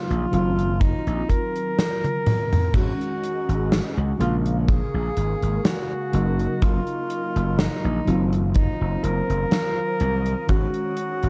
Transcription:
Already playing: C#3 F#3 A#3 D#4 F4
0.10 A#1, closed hi-hat
0.31 F#1 D#3 F#3 C4 F4, closed hi-hat
0.59 closed hi-hat
0.81 D#4, kick, closed hi-hat
1.07 A#1, closed hi-hat
1.29 A#4, kick, closed hi-hat
1.56 closed hi-hat
1.79 snare, closed hi-hat
2.04 closed hi-hat, high tom
2.26 closed hi-hat, mid tom
2.53 closed hi-hat, mid tom
2.73 G#1 D#3 G#3 C#4 F#4 G#4 D#5 F#5 C#6, kick, closed hi-hat, crash
3.01 closed hi-hat
3.24 closed hi-hat
3.49 G#1, closed hi-hat
3.72 snare, closed hi-hat
3.97 C#2
4.18 A#1 C#3 G#3 A#3 F4 A#4 F5 G#5, closed hi-hat
4.46 closed hi-hat
4.68 G#4, kick, closed hi-hat
4.94 A#1
5.17 G#1, closed hi-hat
5.42 G#1, closed hi-hat
5.65 F#4, snare, closed hi-hat
6.12 F#1 C#3 F#3 A#3 D#4 A#4 D#5, closed hi-hat
6.39 closed hi-hat
6.62 F#1 F4, kick, closed hi-hat
6.87 closed hi-hat
7.10 closed hi-hat
7.36 F#1, closed hi-hat
7.59 D#4, snare, closed hi-hat
7.84 A#1
8.05 F#1 D#3 F#3 C4 F4 C5 F5 D#6, closed hi-hat
8.33 closed hi-hat
8.54 D#4, kick, closed hi-hat
8.81 F#1
9.04 F#1 A#4, closed hi-hat
9.29 F#1, closed hi-hat
9.51 snare, closed hi-hat
10.00 C2, closed hi-hat
10.26 closed hi-hat
10.47 G#1 D#3 G#3 C#4 F#4 C#5 G#5, kick, closed hi-hat
10.74 closed hi-hat
10.97 closed hi-hat
11.23 G#1, closed hi-hat

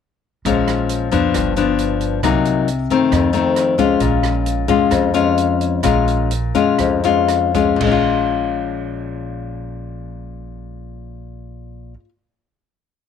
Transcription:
0.45 A#1 A#2 F3 G#3 C#4, kick, closed hi-hat
0.68 cross-stick, closed hi-hat
0.89 closed hi-hat
1.11 F2 F3 B3 D4, kick, closed hi-hat
1.34 G1 G2, kick, cross-stick, closed hi-hat
1.56 F3 B3 D4, closed hi-hat
1.78 closed hi-hat
2.01 closed hi-hat
2.23 C2 C3 F#3 A#3 D#4, kick, cross-stick, closed hi-hat
2.45 closed hi-hat
2.68 closed hi-hat
2.90 F#2 D#3 A3 C4, closed hi-hat
3.12 F2, kick, cross-stick, closed hi-hat
3.33 D#3 A3 C4, closed hi-hat
3.56 cross-stick, closed hi-hat
3.78 G#3 C#4 F4, kick, closed hi-hat
4.00 A#1 A#2, kick, closed hi-hat
4.23 cross-stick, closed hi-hat
4.46 closed hi-hat
4.68 F2 G#3 C#4 F4, kick, closed hi-hat
4.91 F2, kick, cross-stick, closed hi-hat
5.14 G#3 C#4 F4, closed hi-hat
5.38 closed hi-hat
5.61 closed hi-hat
5.83 A#1 A#2 G#3 C#4 F4, kick, cross-stick, closed hi-hat
6.08 closed hi-hat
6.31 closed hi-hat
6.55 F2 G#3 C#4 F4, closed hi-hat
6.78 F2, kick, cross-stick, closed hi-hat
7.03 G#3 C#4 F4, closed hi-hat
7.28 cross-stick, closed hi-hat
7.54 G#3 C#4 F4, kick, closed hi-hat
7.76 A#2
7.80 A#1 G#3, kick, crash
7.87 C#4
7.91 F4

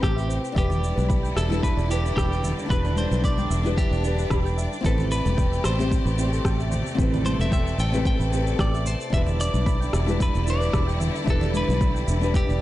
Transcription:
Already playing: C3 A3 C4 E4 G4 B4
0.02 A1 G4 G5, kick, cross-stick, cabasa
0.16 E5, cabasa
0.28 C5, cabasa
0.45 cabasa
0.52 D3 D4 E4 E5
0.56 E1 G3 G4 B4 D5, kick, cabasa
0.69 D5, low conga, cabasa
0.84 cabasa
0.96 B1 B4, high conga, cabasa
1.09 B5, kick, cabasa
1.23 G5, cabasa
1.36 E1 A4 E5, cross-stick, cabasa
1.49 D4 E4 G4 B4, high conga, cabasa
1.63 B4 E5, kick, cabasa
1.77 E1 D5, cabasa
1.86 D4 E4
1.90 G4 B4, cabasa
2.04 B4, cabasa
2.16 E1 G4 B5, kick, cross-stick, cabasa
2.31 G5, cabasa
2.43 E5, low conga, cabasa
2.59 cabasa
2.66 D4 E4
2.70 E1 G4 B4 E5, kick, cabasa
2.85 D5, low conga, cabasa
2.96 C5, high conga, cabasa
3.11 B1 B4, high conga, cabasa
3.24 D5 B5, kick, cabasa
3.38 G5, high conga, cabasa
3.50 E1 E5, cabasa
3.63 D4 E4 G4 B4, high conga, cabasa
3.77 G4 E5, kick, cabasa
3.91 E1 D5, cabasa
4.00 D4 E4
4.04 G4 B4, cabasa
4.19 B4, cabasa
4.30 E1 B5, kick, cross-stick, cabasa
4.45 G5, cabasa
4.58 E5, cabasa
4.73 cabasa
4.81 A1 C4 E4 C5, kick
4.85 C3 A3 G4 A4 B4, cabasa
4.98 B4, low conga, cabasa
5.11 B4, cabasa
5.25 E1 A4, high conga, cabasa
5.37 G5, kick, cabasa
5.52 E5, cabasa
5.64 A1 C5, cross-stick, cabasa
5.78 C4 E4 G4 C5, high conga, cabasa
5.90 C5, kick, cabasa
6.05 A1 B4, cabasa
6.15 C4 E4, cabasa
6.20 G4 C5
6.32 A4, cabasa
6.45 A1 G5, kick, cross-stick, cabasa
6.59 E5, cabasa
6.71 C5, low conga, cabasa
6.87 cabasa
6.95 A1 C4 E4 C5, kick
6.99 G4 A4 B4, cabasa
7.12 B4, low conga, cabasa
7.25 C5, high conga, cabasa
7.39 E1 A4 E5, high conga, cabasa
7.51 E5 G5, kick, cabasa
7.66 E5, cabasa
7.78 A1 C5 G5, cabasa
7.92 C4 E4 G4 B4, high conga, cabasa
8.05 C5 G5, kick, cabasa
8.19 A1 B4, cabasa
8.30 C4 E4, cabasa
8.34 G4 B4
8.47 A4, cabasa
8.59 A1 D5 G5, kick, cross-stick, cabasa
8.74 E5, cabasa
8.85 C5, cabasa
9.01 cabasa
9.10 E1 D3 G3 D4 E4 E5, kick, cabasa
9.15 G4 B4
9.26 D5, low conga, cabasa
9.40 D5, cabasa
9.54 B1 B4, high conga, cabasa
9.66 B5, kick, cabasa
9.81 G5, cabasa
9.93 E1 E5, cross-stick, cabasa
10.06 D4 E4 G4 B4, high conga, cabasa
10.20 B4 E5, kick, cabasa
10.34 E1 D5, cabasa
10.44 D4 E4, cabasa
10.49 G4 B4 D5
10.60 B4, cabasa
10.72 E1 B5, kick, cross-stick, cabasa
10.87 G5, cabasa
11.00 E5, low conga, cabasa
11.15 cabasa
11.24 E1 D4 E4 E5, kick, cabasa
11.29 G4 A4 B4
11.41 D5, low conga, cabasa
11.54 B4, high conga, cabasa
11.67 B1 B4, high conga, cabasa
11.80 B5, kick, cabasa
11.94 G5, cabasa
12.07 E1 E5, cabasa
12.20 D4 E4 G4 B4, high conga, cabasa
12.34 G4 E5, kick, cabasa
12.48 E1 D5, cabasa

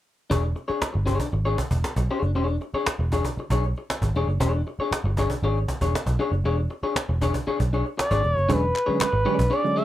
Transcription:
0.30 E1 D4 G#4 C#5, cajon bass
0.43 muted clean electric guitar stroke, cajon slap
0.56 muted clean electric guitar stroke, cajon slap
0.68 D4 G#4 C#5, muted picked electric bass stroke, cajon slap
0.82 muted picked electric bass stroke, cajon slap
0.93 G1, muted clean electric guitar stroke
1.06 D4 G#4 C#5, cajon bass
1.20 muted clean electric guitar stroke, cajon bass
1.32 G#1, muted clean electric guitar stroke, cajon slap
1.45 D4 G#4 C#5, cajon slap
1.58 muted clean electric guitar stroke, cajon bass, cajon slap
1.71 E1, muted clean electric guitar stroke, cajon bass
1.84 muted picked electric bass stroke, cajon slap
1.96 B1, muted clean electric guitar stroke, cajon bass, cajon slap
2.09 D4 G#4 C#5, cajon slap
2.22 F#1, muted clean electric guitar stroke, cajon slap
2.35 E1 D4 G#4 C#5, cajon slap
2.48 muted clean electric guitar stroke, cajon slap
2.60 muted clean electric guitar stroke, cajon slap
2.74 D4 G#4 C#5, muted picked electric bass stroke, cajon slap
2.86 muted picked electric bass stroke, cajon slap
2.99 E1, muted clean electric guitar stroke
3.12 D4 G#4 C#5, cajon bass
3.25 muted clean electric guitar stroke, cajon bass
3.37 muted picked electric bass stroke, muted clean electric guitar stroke, cajon slap
3.50 B1 D4 G#4 C#5, cajon bass, cajon slap
3.63 muted clean electric guitar stroke, cajon slap
3.76 muted clean electric guitar stroke, cajon slap
3.90 cajon slap
4.02 G#1, muted clean electric guitar stroke, cajon bass, cajon slap
4.14 E1 D4 G#4 C#5, cajon slap
4.27 F#1, muted clean electric guitar stroke, cajon slap
4.40 E1 D4 G#4 C#5, cajon bass
4.53 muted clean electric guitar stroke, cajon slap
4.67 muted clean electric guitar stroke, cajon slap
4.79 D4 G#4 C#5, muted picked electric bass stroke, cajon slap
4.91 muted picked electric bass stroke, cajon slap
5.04 G1, muted clean electric guitar stroke
5.17 D4 G#4 C#5, cajon bass
5.30 muted clean electric guitar stroke, cajon bass
5.43 G#1 D4 G#4 C#5, cajon slap
5.57 cajon slap
5.68 muted clean electric guitar stroke, cajon bass, cajon slap
5.81 E1 D4 G#4 C#5, cajon bass
5.94 muted picked electric bass stroke, cajon slap
6.06 B1, muted clean electric guitar stroke, cajon bass, cajon slap
6.19 D4 G#4 C#5, cajon slap
6.31 F#1, muted clean electric guitar stroke, cajon slap
6.44 E1 D4 G#4 C#5, cajon slap
6.57 muted clean electric guitar stroke, cajon slap
6.69 muted clean electric guitar stroke, cajon slap
6.82 D4 G#4 C#5, muted picked electric bass stroke, cajon slap
6.96 muted picked electric bass stroke, cajon slap
7.09 E1, muted clean electric guitar stroke, cajon slap
7.21 D4 G#4 C#5, cajon bass
7.34 muted clean electric guitar stroke, cajon bass
7.47 D4 G#4 C#5, muted picked electric bass stroke
7.59 B1, muted clean electric guitar stroke, cajon bass, cajon slap
7.73 D4 G#4 C#5, cajon slap
7.85 muted clean electric guitar stroke, cajon slap
7.97 D5, muted clean electric guitar stroke, cajon slap
8.11 G#1 D4 G#4 C#5, cajon bass, cajon slap
8.23 E1, muted clean electric guitar stroke, cajon slap
8.35 F#1 C#5, muted clean electric guitar stroke, cajon slap
8.49 E1 D3 F#3 G#3 C#4 D4 G#4 B4 C#5, cajon bass
8.62 muted clean electric guitar stroke
8.75 muted clean electric guitar stroke, cajon slap, clap
8.86 D3 F#3 G#3 C#4 D4 G#4 C#5, muted picked electric bass stroke
9.00 G#3 C#4 B4, muted clean electric guitar stroke, muted picked electric bass stroke, cajon slap, clap
9.13 G#1, muted clean electric guitar stroke, cajon slap
9.25 D3 F#3 G#3 C#4 D4 G#4 D5, cajon slap
9.38 B1, muted clean electric guitar stroke, cajon bass
9.50 D4 G#4 C#5 D5
9.63 D3 F#3 G#3 C#4, muted clean electric guitar stroke, cajon slap
9.76 G#3 C#4 D4 G#4 C#5 E5, cajon slap

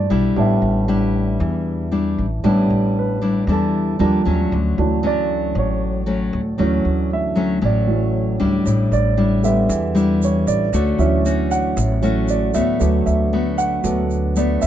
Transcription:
Already playing: E3 A3 D4 C5 D5
0.10 B1 G3 D4 E4
0.36 A1 A2 G3 B3 D4 E5
0.62 A1
0.88 G3 D4 E4
1.40 E2 E3
1.91 G3 D4 E4
2.18 A1
2.44 A1 A2 G3 B3 D4 E4
2.70 A1
2.99 B4
3.22 G3 D4 E4
3.47 E2 E3 G3 D4 E4
3.52 A4
3.99 D#2 F3 G3 A#3 D4
4.25 D#2 F#3 A3 C#4
4.51 D2 D3
4.77 D2 E3 F#3 D4
5.03 F#3 A3 C#4 D5
5.55 A1 A2 C#5
6.06 F#3 A3 C#4
6.33 D2
6.58 D2 D3 E3 F#3 A3 C#4
6.85 D2
7.13 E5
7.36 F#3 A3 C#4
7.61 A1 A2 F#3 A3 C#4 D5
7.87 E3 F#3 C#4
8.40 D2 G3 D4 E4
8.66 A1 A2, shaker
8.92 A1 D5, shaker
9.17 G3 D4 E4
9.43 D3 G3 B3 E5, shaker
9.69 E2 E3, shaker
9.95 G3 D4 E4, shaker
10.22 C#5, shaker
10.47 A1 D5, shaker
10.73 D2 D3 A3 C#4 F#4, shaker
10.98 D2 E3 F#3 C#4 E5, shaker
11.25 A3 C#4 F#4, shaker
11.51 F#5, shaker
11.77 A1 A2, shaker
12.02 E3 F#3 A3 C#4 F#4, shaker
12.28 D5, shaker
12.54 D2 A3 B3 F#4 E5, shaker
12.80 D2 D3 F#3 A3 B3, shaker
13.06 D2 E5, shaker
13.33 A3 B3 F#4
13.58 F#5, shaker
13.83 D2 D3 F#3 A3 B3, shaker
14.10 shaker
14.36 A3 B3 F#4 D5, shaker
14.62 D2 E5, shaker

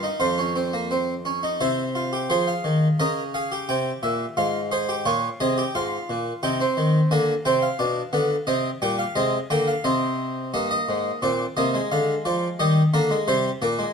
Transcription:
Already playing: A#4
0.03 D#4
0.20 F2 F4 C5
0.38 C#4
0.56 C4
0.73 A#3
0.91 C4
1.25 C#4
1.43 D#4
1.61 C3 E4 C5
1.95 F4
2.13 G4
2.30 F3 G#4 C5
2.47 F5
2.64 D#3
3.00 C#3 A#4 D#5
3.34 G#4 F5
3.52 G4
3.69 C3 G5
4.03 A#2 E5
4.37 G#2 F4 F5
4.72 G#4 C5
4.89 G4
5.05 A#2 F4 C#5
5.40 C3 G#4 D#5
5.58 G4
5.75 G#2 F4 F5
6.10 A#2
6.43 C3 D#4 G5
6.60 C4
6.77 D#3
7.11 D3 A#3 G#5
7.45 C3 C4 G5
7.62 F5
7.79 B2 D4
8.13 D3 B3
8.47 C3 C4 D#5
8.82 A#2 G3 G5
8.99 F5
9.15 C3 G#3 D#5
9.50 D3 A#3 G5
9.68 F5
9.84 C3 C4 D#5
10.54 G2 A#3 D#5
10.71 D#5
10.89 G#2
11.22 A#2 C4 D5
11.57 C3 A#3 D#5
11.74 G#3
11.92 D3 F5
12.25 F3 D5
12.59 D#3 G3 D#5
12.94 D3 A#3 A#4
13.11 G#3
13.28 C3 G3 C5
13.62 A#2 A#3 D5
13.79 G#3

